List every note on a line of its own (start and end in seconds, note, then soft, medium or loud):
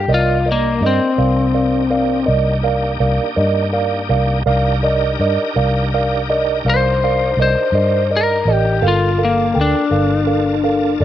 0.00 0.10 G4 medium
0.08 0.78 C2 medium
0.08 4.43 A#3 medium
0.08 4.43 D4 medium
0.08 4.43 D#4 medium
0.08 4.43 G4 medium
0.08 0.37 A#4 medium
0.08 0.37 D5 medium
0.08 0.37 D#5 medium
0.14 0.47 F4 medium
0.46 0.73 A#4 medium
0.46 0.74 D5 soft
0.46 0.74 D#5 medium
0.52 0.84 A#3 medium
0.81 0.98 G2 medium
0.81 1.10 A#4 soft
0.81 1.10 D5 soft
0.81 1.10 D#5 medium
0.86 2.26 C4 medium
1.18 2.24 C2 medium
1.18 1.46 A#4 soft
1.18 1.46 D5 soft
1.18 1.46 F5 medium
1.54 1.82 A#4 medium
1.54 1.82 D5 soft
1.54 1.83 F5 medium
1.90 2.19 A#4 medium
1.90 2.19 D5 medium
1.90 2.19 F5 medium
2.26 2.97 C2 medium
2.26 2.55 A#4 medium
2.26 2.55 D5 medium
2.26 2.55 D#5 medium
2.63 2.92 A#4 medium
2.63 2.92 D5 medium
2.63 2.92 F5 medium
3.00 3.18 C2 medium
3.00 3.28 A#4 medium
3.00 3.28 D5 medium
3.00 3.28 F5 medium
3.36 4.06 G2 medium
3.36 3.64 A#4 medium
3.36 3.64 D5 medium
3.36 3.65 D#5 medium
3.73 4.01 A#4 medium
3.73 4.01 D5 medium
3.73 4.01 F5 medium
4.09 4.44 C2 medium
4.09 4.37 A#4 medium
4.09 4.38 D5 medium
4.09 4.38 F5 medium
4.46 5.16 C2 medium
4.46 8.80 D4 medium
4.46 8.80 D#4 medium
4.46 8.80 G4 medium
4.46 4.74 A#4 medium
4.46 8.80 A#4 medium
4.46 4.74 D5 medium
4.46 4.74 F5 medium
4.83 5.11 A#4 medium
4.83 5.11 D5 medium
4.83 5.11 D#5 medium
5.20 5.37 G2 medium
5.20 5.48 A#4 medium
5.20 5.48 D5 medium
5.20 5.48 D#5 medium
5.56 6.62 C2 medium
5.56 5.83 A#4 medium
5.56 5.84 D5 medium
5.56 5.84 F5 medium
5.94 6.21 A#4 medium
5.94 6.21 D5 medium
5.94 6.21 F5 medium
6.30 6.57 A#4 medium
6.30 6.57 D5 medium
6.30 6.57 D#5 medium
6.65 7.34 C2 medium
6.65 6.93 A#4 medium
6.65 6.93 D5 soft
6.65 6.93 F5 medium
6.70 7.38 C5 medium
7.04 7.30 A#4 medium
7.04 7.30 D5 medium
7.04 7.30 F5 medium
7.37 7.54 C2 medium
7.37 7.66 A#4 medium
7.37 7.67 D5 soft
7.37 7.66 D#5 medium
7.42 8.11 C5 medium
7.72 8.42 G2 medium
7.72 8.02 A#4 medium
7.72 8.02 D5 medium
7.72 8.02 D#5 medium
8.10 8.38 A#4 medium
8.10 8.38 D5 soft
8.10 8.38 D#5 medium
8.17 8.53 A#4 medium
8.45 8.80 A1 medium
8.45 8.75 A#4 medium
8.45 8.75 D5 soft
8.45 8.75 D#5 medium
8.53 8.85 G4 medium
8.81 9.52 G1 medium
8.81 11.05 A#3 medium
8.81 11.05 D4 medium
8.81 11.05 F4 medium
8.81 9.10 A4 medium
8.81 9.10 A#4 medium
8.81 9.11 F5 medium
8.81 11.05 A5 medium
8.88 9.21 F4 medium
9.18 9.46 A4 medium
9.18 9.47 A#4 medium
9.18 9.47 F5 medium
9.25 9.58 A#3 medium
9.54 9.73 D2 medium
9.54 9.82 A4 medium
9.54 9.83 A#4 soft
9.54 9.83 G5 medium
9.61 11.00 D4 medium
9.90 10.97 G1 medium
9.90 10.19 A4 medium
9.90 10.19 A#4 soft
9.90 10.20 F5 medium
10.27 10.55 A4 medium
10.27 10.55 A#4 soft
10.27 10.56 F5 medium
10.64 10.92 A4 medium
10.64 10.92 A#4 medium
10.64 10.92 F5 medium
11.00 11.05 G1 medium
11.00 11.05 A4 medium
11.00 11.05 A#4 medium
11.00 11.05 D5 medium